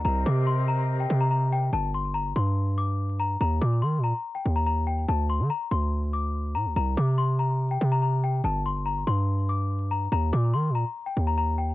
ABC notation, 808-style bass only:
X:1
M:4/4
L:1/16
Q:1/4=143
K:Gm
V:1 name="808-style bass" clef=bass
C,,2 C,8 C,6 | G,,,6 G,,8- G,,2 | E,,2 B,,2 E,3/2 B,,3/2 z3 E,,6 | D,,3 D, z2 D,,8 A,, D,, |
C,,2 C,8 C,6 | G,,,6 G,,8- G,,2 | E,,2 B,,2 E,3/2 B,,3/2 z3 E,,6 |]